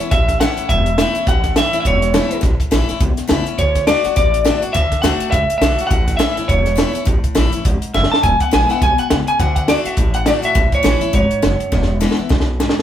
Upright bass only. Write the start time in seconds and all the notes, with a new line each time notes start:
0.12 A1
0.57 muted upright bass stroke
0.69 E1
1.15 muted upright bass stroke
1.27 A1
1.73 muted upright bass stroke
1.85 E1
2.31 muted upright bass stroke
2.43 A1
2.72 A1
3.01 B1
3.18 muted upright bass stroke
3.30 C#2
3.58 D2
4.05 muted upright bass stroke
4.17 A1
4.63 muted upright bass stroke
4.75 D2
5.03 D2
5.20 muted upright bass stroke
5.33 C#2
5.50 muted upright bass stroke
5.61 B1
5.91 A1
6.36 muted upright bass stroke
6.49 E1
6.94 muted upright bass stroke
7.07 A1
7.24 muted upright bass stroke
7.36 A1
7.53 muted upright bass stroke
7.65 G#1
7.82 muted upright bass stroke
7.94 F#1
8.11 muted upright bass stroke
8.24 E1
8.41 muted upright bass stroke
8.53 A1
8.82 B1
9.11 C#2
9.40 D2
9.85 muted upright bass stroke
9.97 A1
10.43 muted upright bass stroke
10.55 A1
10.73 muted upright bass stroke
10.84 A1
11.01 muted upright bass stroke
11.14 G#1
11.30 muted upright bass stroke
11.43 F#1
11.60 muted upright bass stroke
11.72 E1
12.19 muted upright bass stroke
12.31 B1
12.76 muted upright bass stroke